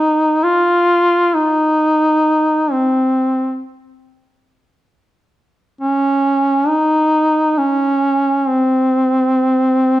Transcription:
Already playing: D#4
0.44 F4
1.35 D#4
2.72 C4
5.81 C#4
6.67 D#4
7.58 C#4
8.48 C4

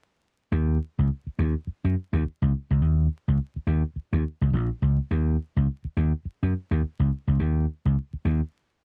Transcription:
0.52 D#2
0.99 C#2
1.27 muted slap bass stroke
1.39 D#2
1.67 muted slap bass stroke
1.84 F#2
2.13 D#2
2.25 muted slap bass stroke
2.42 C#2
2.70 C#2
2.82 D#2
3.28 C#2
3.56 muted slap bass stroke
3.67 D#2
3.96 muted slap bass stroke
4.13 D#2
4.41 C#2
4.53 A#1
4.82 C#2
5.11 D#2
5.57 C#2
5.85 muted slap bass stroke
5.97 D#2
6.25 muted slap bass stroke
6.43 F#2
6.71 D#2
6.83 muted slap bass stroke
6.99 C#2
7.28 C#2
7.40 D#2
7.85 C#2
8.13 muted slap bass stroke
8.25 D#2

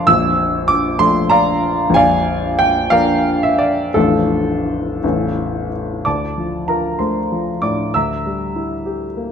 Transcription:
Already playing: F1 F2 D6
0.07 A#0 A#1 E6
0.68 D6
0.99 F3 A3 D4 C6
1.30 D5 F5 A#5
1.90 A#0 A#1
1.94 D5 F5 G#5
2.59 G5
2.90 F3 A#3 D4 A#4 D5 F5
3.43 E5
3.58 D5
3.94 A0 A1 F3 A3 D4 F4 A4
5.03 A0 A1 E3 A3 C#4
6.05 D2 D5 A5 D6
6.38 F3
6.68 F4 A#4 A#5
6.99 A3 C5 C6
7.32 F3
7.62 A2 D5 D6
7.94 D2 E5 A#5 E6
8.26 G3
8.56 E4
8.86 G4
9.17 A#3

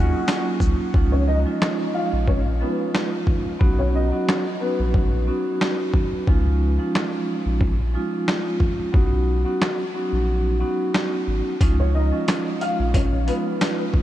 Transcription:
Already playing: D#2 F#3 A#3 C#4 D#4 F4 F#4
0.28 snare, closed hi-hat
0.60 C#2, kick, shaker
0.94 C#2 F3 G#3 C#4 D#4 F4, kick
1.12 C#4 C#5
1.27 D#4 D#5
1.45 F3 G#3 C#4 D#4 F4
1.62 snare
1.94 F4 F5
2.13 A#1
2.27 C#4 C#5, kick
2.60 F3 G#3 B3 C#4 D#4 F4 B4
2.95 snare
3.27 G#1, kick
3.59 B1 F#3 B3 C#4 D#4 F#4, kick
3.79 C#4 C#5
3.95 D#4 D#5
4.11 F#3 B3 C#4 D#4 F#4
4.29 snare
4.60 F#3 B3 C#4 D#4 F#4 B4
4.80 A#1
4.94 kick
5.27 F#3 B3 C#4 D#4 F#4
5.61 snare
5.94 G#1, kick
6.27 C#2 F3 G#3 C#4 D#4 F4, kick
6.78 F3 G#3 C#4 D#4 F4
6.95 snare
7.46 A#1
7.61 kick
7.94 F3 G#3 C#4 D#4 F4
8.28 snare
8.60 G#1, kick
8.92 B1 F#3 B3 C#4 D#4 F#4, kick
9.45 F#3 B3 C#4 D#4 F#4
9.62 snare
9.94 F#3 B3 C#4 D#4 F#4
10.13 A#1
10.60 F#3 B3 C#4 D#4 F#4
10.95 snare
11.28 G#1
11.61 C#2 F3 G#3 C#4 D#4 F4, kick, closed hi-hat
11.80 C#4 C#5
11.94 D#4 D#5
12.12 F3 G#3 C#4 D#4 F4
12.28 snare, closed hi-hat
12.61 F4 F5, closed hi-hat
12.79 A#1
12.94 C#4 C#5, kick, closed hi-hat
13.27 F3 G#3 B3 C#4 D#4 F4 B4, closed hi-hat
13.61 snare, closed hi-hat
13.94 G#1, kick

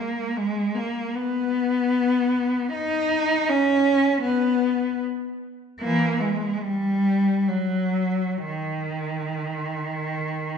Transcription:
Already playing: A#3
0.37 G#3
0.76 A#3
1.15 B3
2.73 D#4
3.49 C#4
4.23 B3
5.80 E3 A#3
6.20 G#3
6.63 G3
7.48 F#3
8.45 D#3

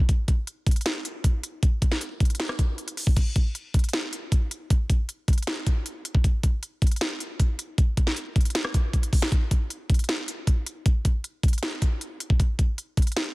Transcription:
0.09 kick, closed hi-hat
0.28 kick, closed hi-hat
0.47 closed hi-hat
0.67 kick, closed hi-hat
0.71 closed hi-hat
0.76 closed hi-hat
0.81 closed hi-hat
0.86 snare
1.05 closed hi-hat
1.24 kick, closed hi-hat
1.43 closed hi-hat
1.63 kick, closed hi-hat
1.82 kick, closed hi-hat
1.92 snare
2.01 closed hi-hat
2.20 kick, closed hi-hat
2.25 closed hi-hat
2.30 closed hi-hat
2.35 closed hi-hat
2.40 snare, closed hi-hat
2.49 cross-stick
2.59 kick, closed hi-hat
2.78 closed hi-hat
2.88 closed hi-hat
2.97 open hi-hat
3.07 kick
3.17 kick, closed hi-hat, crash
3.36 kick, closed hi-hat
3.55 closed hi-hat
3.74 kick, closed hi-hat
3.79 closed hi-hat
3.84 closed hi-hat
3.89 closed hi-hat
3.93 snare, closed hi-hat
4.13 closed hi-hat
4.32 kick, closed hi-hat
4.51 closed hi-hat
4.70 kick, closed hi-hat
4.90 kick, closed hi-hat
5.09 closed hi-hat
5.28 kick, closed hi-hat
5.33 closed hi-hat
5.38 closed hi-hat
5.43 closed hi-hat
5.47 snare
5.67 kick, closed hi-hat
5.86 closed hi-hat
6.05 closed hi-hat
6.15 kick
6.24 kick, closed hi-hat
6.43 kick, closed hi-hat
6.63 closed hi-hat
6.82 kick, closed hi-hat
6.87 closed hi-hat
6.92 closed hi-hat
6.96 closed hi-hat
7.01 snare
7.20 closed hi-hat
7.40 kick, closed hi-hat
7.59 closed hi-hat
7.78 kick, closed hi-hat
7.97 kick, closed hi-hat
8.07 snare
8.17 closed hi-hat
8.36 kick, closed hi-hat
8.41 closed hi-hat
8.45 closed hi-hat
8.50 closed hi-hat
8.55 snare, closed hi-hat
8.65 cross-stick
8.74 kick, closed hi-hat
8.93 kick, closed hi-hat
9.03 closed hi-hat
9.13 kick, open hi-hat
9.22 snare
9.32 kick, closed hi-hat
9.51 kick, closed hi-hat
9.70 closed hi-hat
9.90 kick, closed hi-hat
9.94 closed hi-hat
9.99 closed hi-hat
10.04 closed hi-hat
10.09 snare, closed hi-hat
10.28 closed hi-hat
10.47 kick, closed hi-hat
10.66 closed hi-hat
10.86 kick, closed hi-hat
11.05 kick, closed hi-hat
11.24 closed hi-hat
11.43 kick, closed hi-hat
11.48 closed hi-hat
11.53 closed hi-hat
11.58 closed hi-hat
11.63 snare
11.82 kick, closed hi-hat
12.01 closed hi-hat
12.20 closed hi-hat
12.30 kick
12.40 kick, closed hi-hat
12.59 kick, closed hi-hat
12.78 closed hi-hat
12.97 kick, closed hi-hat
13.02 closed hi-hat
13.07 closed hi-hat
13.12 closed hi-hat
13.17 snare, closed hi-hat

